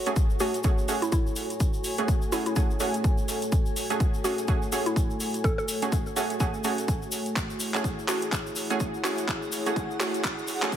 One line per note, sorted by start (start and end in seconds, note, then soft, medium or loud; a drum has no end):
0.00 10.77 A3 medium
0.00 7.32 F#4 medium
0.00 10.77 F#4 medium
0.00 7.35 A4 medium
0.00 10.77 C#5 medium
0.06 0.18 A3 medium
0.06 0.18 C#4 medium
0.06 0.18 F#4 medium
0.06 0.18 G#4 loud
0.06 7.53 G#5 medium
0.06 closed hi-hat medium
0.06 shaker soft
0.16 kick loud
0.16 closed hi-hat medium
0.16 shaker medium
0.30 shaker soft
0.40 0.61 A3 medium
0.40 0.61 C#4 medium
0.40 0.59 F#4 medium
0.40 0.61 F#4 medium
0.40 0.61 G#4 loud
0.40 open hi-hat medium
0.40 shaker medium
0.54 closed hi-hat medium
0.54 shaker soft
0.63 0.86 A3 medium
0.63 0.86 C#4 medium
0.63 0.86 F#4 medium
0.63 0.86 G#4 loud
0.63 kick loud
0.63 closed hi-hat medium
0.63 shaker medium
0.78 shaker soft
0.88 1.10 A3 medium
0.88 1.10 C#4 medium
0.88 1.10 F#4 medium
0.88 1.10 G#4 loud
0.88 open hi-hat loud
0.88 shaker medium
1.02 1.10 E4 medium
1.02 closed hi-hat medium
1.02 shaker soft
1.12 1.80 E4 medium
1.12 kick loud
1.12 closed hi-hat medium
1.12 shaker medium
1.27 shaker soft
1.36 open hi-hat loud
1.36 shaker medium
1.50 closed hi-hat medium
1.50 shaker soft
1.60 kick loud
1.60 closed hi-hat soft
1.60 shaker medium
1.73 shaker soft
1.84 open hi-hat loud
1.84 shaker medium
1.98 2.10 A3 medium
1.98 2.10 C#4 medium
1.98 2.10 F#4 medium
1.98 2.10 G#4 loud
1.98 closed hi-hat medium
1.98 shaker soft
2.08 kick loud
2.08 closed hi-hat medium
2.08 shaker soft
2.22 shaker soft
2.32 2.53 A3 loud
2.32 2.53 C#4 medium
2.32 2.41 E4 medium
2.32 2.53 F#4 medium
2.32 2.53 G#4 loud
2.32 open hi-hat medium
2.32 shaker medium
2.46 2.53 E4 medium
2.46 closed hi-hat medium
2.46 shaker soft
2.56 2.78 A3 medium
2.56 2.78 C#4 medium
2.56 2.78 F#4 medium
2.56 2.78 G#4 loud
2.56 kick loud
2.56 closed hi-hat medium
2.56 shaker medium
2.70 shaker soft
2.80 3.02 A3 medium
2.80 3.02 C#4 medium
2.80 3.02 F#4 medium
2.80 3.02 G#4 loud
2.80 open hi-hat loud
2.80 shaker medium
2.94 closed hi-hat medium
2.94 shaker soft
3.04 kick loud
3.04 closed hi-hat soft
3.04 shaker medium
3.18 shaker soft
3.28 open hi-hat medium
3.28 shaker medium
3.42 closed hi-hat medium
3.42 shaker soft
3.52 kick loud
3.52 closed hi-hat soft
3.52 shaker medium
3.66 shaker soft
3.76 open hi-hat loud
3.76 shaker medium
3.90 4.02 A3 loud
3.90 4.02 C#4 medium
3.90 4.02 F#4 medium
3.90 4.02 G#4 loud
3.90 closed hi-hat medium
3.90 shaker soft
4.00 kick loud
4.00 closed hi-hat medium
4.00 shaker medium
4.14 shaker soft
4.24 4.45 A3 loud
4.24 4.45 C#4 medium
4.24 4.45 F#4 medium
4.24 4.43 F#4 medium
4.24 4.45 G#4 loud
4.24 open hi-hat loud
4.24 shaker medium
4.38 closed hi-hat medium
4.38 shaker soft
4.48 4.70 A3 medium
4.48 4.70 C#4 medium
4.48 4.70 F#4 medium
4.48 4.70 G#4 loud
4.48 kick loud
4.48 closed hi-hat soft
4.48 shaker soft
4.62 shaker soft
4.72 4.94 A3 medium
4.72 4.94 C#4 medium
4.72 4.94 F#4 medium
4.72 4.94 G#4 loud
4.72 open hi-hat loud
4.72 shaker medium
4.86 4.94 E4 medium
4.86 closed hi-hat medium
4.86 shaker soft
4.96 kick loud
4.96 closed hi-hat soft
4.96 shaker medium
5.10 shaker soft
5.20 open hi-hat loud
5.20 shaker medium
5.34 closed hi-hat medium
5.34 shaker soft
5.44 5.53 A4 medium
5.44 kick loud
5.44 closed hi-hat soft
5.44 shaker soft
5.58 5.65 A4 medium
5.58 shaker soft
5.68 open hi-hat loud
5.68 shaker loud
5.82 5.94 A3 medium
5.82 5.94 C#4 medium
5.82 5.94 F#4 medium
5.82 5.94 G#4 loud
5.82 closed hi-hat medium
5.82 shaker soft
5.92 kick loud
5.92 closed hi-hat soft
5.92 shaker medium
6.06 shaker soft
6.16 6.37 A3 loud
6.16 6.37 C#4 medium
6.16 6.37 F#4 medium
6.16 6.37 G#4 loud
6.16 open hi-hat medium
6.16 shaker medium
6.30 closed hi-hat medium
6.30 shaker soft
6.40 6.62 A3 medium
6.40 6.62 C#4 medium
6.40 6.62 F#4 medium
6.40 6.62 G#4 loud
6.40 kick loud
6.40 closed hi-hat soft
6.40 shaker medium
6.54 shaker soft
6.64 6.86 A3 medium
6.64 6.86 C#4 medium
6.64 6.86 F#4 medium
6.64 6.86 G#4 loud
6.64 open hi-hat loud
6.64 shaker loud
6.78 closed hi-hat medium
6.78 shaker soft
6.88 kick loud
6.88 closed hi-hat soft
6.88 shaker soft
7.02 shaker soft
7.12 open hi-hat loud
7.12 shaker loud
7.26 closed hi-hat medium
7.26 shaker soft
7.36 10.77 E4 medium
7.36 10.77 G#4 medium
7.36 10.77 F#5 medium
7.36 kick loud
7.36 clap soft
7.36 closed hi-hat soft
7.36 riser medium
7.36 shaker soft
7.50 shaker soft
7.60 open hi-hat loud
7.60 shaker loud
7.74 7.86 A3 medium
7.74 7.86 C#4 medium
7.74 7.86 F#4 medium
7.74 7.86 G#4 medium
7.74 clap soft
7.74 closed hi-hat medium
7.74 shaker soft
7.84 kick loud
7.84 closed hi-hat medium
7.84 shaker soft
7.99 shaker soft
8.08 8.29 A3 medium
8.08 8.29 C#4 medium
8.08 8.27 F#4 medium
8.08 8.29 F#4 medium
8.08 8.29 G#4 loud
8.08 clap medium
8.08 open hi-hat medium
8.08 shaker medium
8.22 closed hi-hat medium
8.22 shaker soft
8.32 kick loud
8.32 clap medium
8.32 closed hi-hat soft
8.32 shaker medium
8.47 shaker soft
8.56 open hi-hat loud
8.56 shaker medium
8.70 8.82 A3 medium
8.70 8.82 C#4 medium
8.70 8.82 F#4 medium
8.70 8.82 G#4 loud
8.70 closed hi-hat medium
8.70 shaker soft
8.80 kick loud
8.80 closed hi-hat soft
8.80 shaker medium
8.94 shaker soft
9.04 9.25 A3 medium
9.04 9.25 C#4 medium
9.04 9.25 F#4 medium
9.04 9.23 F#4 medium
9.04 9.25 G#4 loud
9.04 clap medium
9.04 open hi-hat medium
9.04 shaker medium
9.18 closed hi-hat medium
9.18 shaker soft
9.28 kick loud
9.28 clap medium
9.28 closed hi-hat soft
9.28 shaker soft
9.42 shaker soft
9.52 open hi-hat loud
9.52 shaker loud
9.66 9.78 A3 medium
9.66 9.78 C#4 medium
9.66 9.78 F#4 medium
9.66 9.78 G#4 medium
9.66 closed hi-hat medium
9.66 shaker soft
9.76 kick loud
9.76 closed hi-hat medium
9.76 shaker soft
9.91 shaker soft
10.00 10.21 A3 medium
10.00 10.21 C#4 medium
10.00 10.19 F#4 medium
10.00 10.21 F#4 medium
10.00 10.21 G#4 loud
10.00 clap medium
10.00 open hi-hat medium
10.00 shaker medium
10.14 closed hi-hat medium
10.14 shaker soft
10.24 kick loud
10.24 clap medium
10.24 closed hi-hat medium
10.24 shaker soft
10.38 shaker soft
10.47 open hi-hat loud
10.47 shaker medium
10.62 10.74 A3 medium
10.62 10.74 C#4 medium
10.62 10.74 F#4 medium
10.62 10.74 G#4 loud
10.62 clap medium
10.62 closed hi-hat medium
10.62 shaker soft
10.72 kick loud
10.72 closed hi-hat medium
10.72 shaker medium